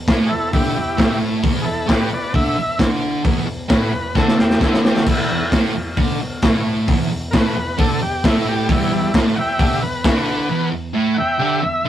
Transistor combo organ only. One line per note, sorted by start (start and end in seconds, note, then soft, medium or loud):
0.26 0.50 E4 medium
0.26 0.29 G#4 medium
0.26 0.51 A4 medium
0.52 0.73 E4 medium
0.52 0.73 G4 medium
0.74 1.17 E4 medium
0.74 1.19 G4 medium
1.62 1.86 E4 medium
1.62 1.65 G#4 medium
1.62 1.87 A4 loud
1.88 2.09 G4 medium
1.88 2.11 B4 loud
2.13 2.33 B4 medium
2.13 2.35 D5 medium
2.35 2.79 E5 loud
3.69 3.72 A#4 medium
3.73 4.16 B4 loud
4.18 4.39 A4 medium
4.40 4.61 G4 loud
4.63 4.84 E4 medium
4.86 5.07 G4 medium
5.06 5.50 E4 medium
7.31 7.33 A#4 medium
7.35 7.78 B4 loud
7.80 8.01 A4 loud
8.02 8.23 G4 loud
8.26 8.47 E4 medium
8.49 8.69 G4 loud
8.72 9.12 G3 medium
8.72 9.14 E4 loud
9.36 9.58 E5 medium
9.36 9.38 F#5 medium
9.40 9.60 G5 loud
9.60 9.80 G4 loud
9.60 9.82 E5 loud
9.82 10.70 B4 loud
11.14 11.38 E5 loud
11.14 11.17 F#5 medium
11.20 11.40 G5 loud
11.39 11.60 G4 medium
11.39 11.62 E5 loud
11.63 11.89 E5 loud